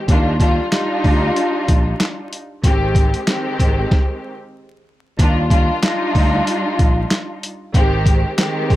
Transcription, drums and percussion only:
0.08 kick loud
0.08 closed hi-hat medium
0.40 kick medium
0.40 closed hi-hat medium
0.72 snare loud
0.72 clap medium
0.72 closed hi-hat medium
1.04 kick medium
1.04 open hi-hat medium
1.36 closed hi-hat medium
1.68 kick loud
1.68 closed hi-hat medium
2.00 snare loud
2.00 clap medium
2.00 closed hi-hat loud
2.33 closed hi-hat medium
2.64 kick loud
2.64 closed hi-hat medium
2.95 kick medium
2.95 closed hi-hat medium
3.14 closed hi-hat medium
3.27 snare loud
3.27 clap medium
3.27 closed hi-hat medium
3.59 kick medium
3.59 snare soft
3.59 closed hi-hat medium
3.91 kick loud
3.91 snare medium
5.19 kick loud
5.19 closed hi-hat medium
5.50 kick medium
5.50 closed hi-hat medium
5.82 snare loud
5.82 clap medium
5.82 closed hi-hat medium
6.15 kick medium
6.15 open hi-hat medium
6.47 closed hi-hat loud
6.79 kick loud
6.79 closed hi-hat medium
7.11 snare loud
7.11 clap medium
7.11 closed hi-hat loud
7.43 closed hi-hat medium
7.74 kick loud
7.74 closed hi-hat medium
8.06 kick medium
8.06 closed hi-hat medium
8.38 snare loud
8.38 clap loud
8.38 closed hi-hat medium
8.70 kick medium
8.70 open hi-hat medium

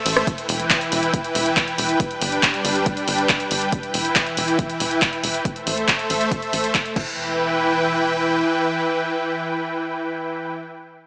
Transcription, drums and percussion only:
0.06 open hi-hat medium
0.06 ride medium
0.17 cross-stick medium
0.17 closed hi-hat soft
0.27 kick loud
0.27 closed hi-hat medium
0.38 closed hi-hat soft
0.49 open hi-hat loud
0.60 closed hi-hat soft
0.70 kick loud
0.70 clap loud
0.70 closed hi-hat medium
0.81 closed hi-hat soft
0.92 open hi-hat medium
1.03 closed hi-hat soft
1.14 kick loud
1.14 closed hi-hat medium
1.24 closed hi-hat soft
1.35 open hi-hat loud
1.46 closed hi-hat soft
1.57 kick loud
1.57 clap loud
1.57 closed hi-hat medium
1.68 closed hi-hat soft
1.78 open hi-hat medium
1.89 closed hi-hat soft
2.00 kick loud
2.00 closed hi-hat medium
2.11 closed hi-hat soft
2.21 open hi-hat loud
2.32 closed hi-hat soft
2.43 kick loud
2.43 clap loud
2.43 closed hi-hat medium
2.54 closed hi-hat soft
2.65 open hi-hat medium
2.75 closed hi-hat soft
2.86 kick loud
2.86 closed hi-hat medium
2.97 closed hi-hat soft
3.08 open hi-hat loud
3.18 closed hi-hat soft
3.29 kick loud
3.29 clap loud
3.29 closed hi-hat medium
3.40 closed hi-hat soft
3.51 open hi-hat medium
3.62 closed hi-hat soft
3.72 kick loud
3.72 closed hi-hat medium
3.83 closed hi-hat soft
3.94 open hi-hat loud
4.05 closed hi-hat soft
4.16 kick loud
4.16 clap loud
4.16 closed hi-hat medium
4.26 closed hi-hat soft
4.37 open hi-hat medium
4.48 closed hi-hat soft
4.59 kick loud
4.59 closed hi-hat medium
4.70 closed hi-hat soft
4.80 open hi-hat loud
4.91 closed hi-hat soft
5.02 kick loud
5.02 clap loud
5.02 closed hi-hat medium
5.13 closed hi-hat soft
5.24 open hi-hat medium
5.34 closed hi-hat soft
5.45 kick loud
5.45 closed hi-hat medium
5.56 closed hi-hat soft
5.67 open hi-hat loud
5.78 closed hi-hat soft
5.88 kick loud
5.88 clap loud
5.88 closed hi-hat medium
5.99 closed hi-hat soft
6.10 open hi-hat medium
6.21 closed hi-hat soft
6.31 kick loud
6.31 closed hi-hat medium
6.42 closed hi-hat soft
6.53 open hi-hat loud
6.64 closed hi-hat soft
6.75 kick loud
6.75 clap loud
6.75 closed hi-hat medium
6.86 closed hi-hat soft
6.96 kick loud
6.96 crash medium

